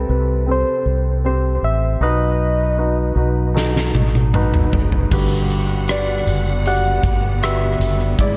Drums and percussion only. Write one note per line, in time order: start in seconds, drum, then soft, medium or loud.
3.57 snare soft
3.76 snare soft
3.95 high tom medium
4.15 high tom soft
4.34 mid tom medium
4.54 mid tom medium
4.73 floor tom medium
4.92 floor tom medium
5.11 kick loud
5.11 crash medium
5.50 closed hi-hat medium
5.88 cross-stick medium
5.88 closed hi-hat medium
6.27 closed hi-hat medium
6.66 closed hi-hat medium
7.03 kick medium
7.03 closed hi-hat medium
7.43 cross-stick medium
7.43 closed hi-hat medium
7.81 closed hi-hat medium
8.00 closed hi-hat soft
8.19 kick loud
8.19 closed hi-hat medium